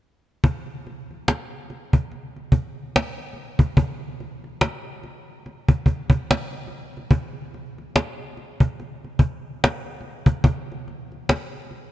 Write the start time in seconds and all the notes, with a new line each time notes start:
0.44 cajon bass
0.87 cajon slap
1.11 cajon slap
1.28 cajon slap
1.70 cajon slap
1.93 cajon bass
2.12 cajon slap
2.36 cajon slap
2.52 cajon bass
2.96 cajon slap
3.33 cajon slap
3.59 cajon bass, cajon slap
3.77 cajon bass
4.20 cajon slap
4.44 cajon slap
4.61 cajon slap
5.04 cajon slap
5.46 cajon slap
5.68 cajon bass
5.86 cajon bass
6.10 cajon bass
6.31 cajon slap
6.67 cajon slap
6.97 cajon slap
7.11 cajon bass
7.54 cajon slap
7.78 cajon slap
7.96 cajon slap
8.37 cajon slap
8.60 cajon bass
8.80 cajon slap
9.04 cajon slap
9.19 cajon bass
9.64 cajon slap
10.01 cajon slap
10.26 cajon bass
10.44 cajon bass
10.72 cajon slap
10.88 cajon slap
11.12 cajon slap
11.29 cajon slap
11.71 cajon slap